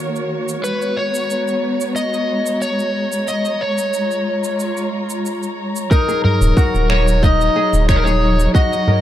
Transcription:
0.00 0.64 D#3 medium
0.00 0.64 A#3 medium
0.00 3.27 F#4 medium
0.00 9.01 C#5 medium
0.16 shaker soft
0.49 shaker medium
0.63 5.91 G#3 medium
0.63 0.98 B4 medium
0.63 shaker medium
0.73 3.27 B3 medium
0.82 shaker soft
0.97 1.95 C#5 medium
1.08 9.01 A#5 medium
1.15 shaker medium
1.30 shaker medium
1.48 shaker soft
1.81 shaker medium
1.96 2.63 D#5 loud
1.96 shaker soft
2.14 shaker soft
2.46 shaker medium
2.62 3.29 C#5 medium
2.62 shaker medium
2.79 shaker soft
3.12 shaker medium
3.28 3.62 D#5 medium
3.28 shaker medium
3.45 shaker soft
3.61 4.89 C#5 medium
3.78 shaker medium
3.94 5.91 F4 medium
3.94 shaker medium
4.11 shaker soft
4.44 shaker medium
4.60 shaker soft
4.77 shaker soft
5.10 shaker medium
5.26 shaker medium
5.43 shaker soft
5.76 shaker medium
5.91 9.01 F#3 medium
5.91 7.23 D#4 medium
5.91 6.23 A#4 medium
5.91 kick loud
5.91 tabla tin medium
5.91 shaker medium
6.08 7.45 G#4 medium
6.08 tabla tin medium
6.08 shaker soft
6.25 6.92 A#4 medium
6.25 tabla ge medium
6.34 9.01 D#4 medium
6.41 6.52 D#1 loud
6.41 shaker medium
6.57 8.03 F#4 loud
6.57 kick loud
6.57 shaker medium
6.74 7.49 D#1 medium
6.74 shaker soft
6.90 8.17 A#4 medium
6.90 7.24 C#5 medium
6.90 finger snap medium
7.08 shaker medium
7.23 7.89 D#4 loud
7.23 7.89 D#5 loud
7.23 kick loud
7.23 shaker medium
7.41 shaker soft
7.56 8.06 G#4 loud
7.73 8.48 D#1 medium
7.73 shaker medium
7.89 9.01 D#4 medium
7.89 7.97 C#5 loud
7.89 finger snap medium
7.89 kick loud
7.89 shaker medium
7.96 8.04 A#4 medium
8.04 9.01 G#4 medium
8.04 8.54 C#5 medium
8.04 shaker soft
8.22 tabla na medium
8.40 shaker medium
8.55 9.01 F#4 loud
8.55 9.01 D#5 loud
8.55 kick loud
8.55 shaker medium
8.72 tabla tin soft
8.72 shaker soft
8.88 9.01 A#4 medium
8.88 tabla ge medium

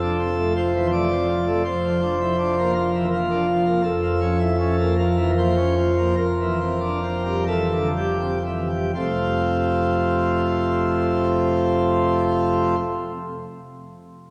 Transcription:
0.00 1.62 F1 medium
0.00 1.62 F2 medium
0.00 0.17 D4 medium
0.00 0.53 A4 loud
0.19 0.35 C4 medium
0.37 0.53 A3 medium
0.56 0.72 F3 medium
0.56 0.87 C5 loud
0.75 0.90 E3 medium
0.92 1.09 A3 medium
0.92 1.64 D5 loud
1.11 1.27 C4 medium
1.28 1.45 F3 medium
1.46 1.63 A3 medium
1.64 3.79 F1 medium
1.64 3.79 F2 medium
1.64 2.71 C5 loud
1.84 2.00 F3 medium
2.02 2.18 D4 medium
2.21 2.36 E4 medium
2.38 2.55 D4 medium
2.59 2.74 A#3 medium
2.75 2.91 F3 medium
2.75 3.06 A#4 loud
2.94 3.09 E3 medium
3.13 3.28 A#3 medium
3.13 3.83 F4 loud
3.30 3.46 D4 medium
3.48 3.64 F3 medium
3.65 3.81 A#3 medium
3.82 6.13 F1 medium
3.82 6.13 F2 medium
3.82 4.94 A4 loud
4.02 4.19 F3 medium
4.21 4.38 C#4 medium
4.39 4.56 E4 medium
4.59 4.76 C#4 medium
4.79 4.96 A#3 medium
4.98 5.16 F3 medium
4.98 5.31 A#4 loud
5.17 5.34 E3 medium
5.37 5.55 A#3 medium
5.37 6.15 C5 loud
5.57 5.75 C#4 medium
5.77 5.95 F3 medium
5.97 6.15 A#3 medium
6.17 8.92 F1 medium
6.17 8.92 F2 medium
6.17 7.44 A#4 loud
6.40 6.59 E3 medium
6.60 6.79 C4 medium
6.80 6.99 D4 medium
7.03 7.23 C4 medium
7.25 7.45 G3 medium
7.47 7.68 E3 medium
7.47 7.88 A4 loud
7.72 7.92 D3 medium
7.96 8.18 G3 medium
7.96 8.38 G4 medium
8.20 8.43 C4 medium
8.45 8.68 E3 medium
8.69 8.91 G3 medium
8.94 12.75 F1 medium
8.94 12.75 F2 medium
8.94 12.75 C3 medium
8.94 12.75 A3 medium
8.94 12.75 C4 medium
8.94 12.75 F4 medium

